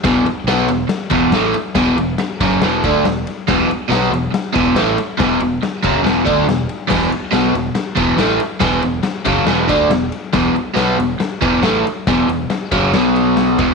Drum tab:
CC |--------|--------|--------|--------|
RD |xxxxxxxx|xxxxxxxx|xxxxxxxx|xxxxxxxx|
SD |o-o-o-o-|o-o-o-o-|o-o-o-o-|o-o-o-o-|
BD |o----o--|o--o-o--|o----o--|o--o-o--|

CC |x-------|--------|--------|--------|
RD |-xxxxxxx|xxxxxxxx|xxxxxxxx|xxxxxxxx|
SD |o-o-o-o-|o-o-o-o-|o-o-o-o-|o-o-o-o-|
BD |o----o--|o--o-o--|o----o--|o--o---o|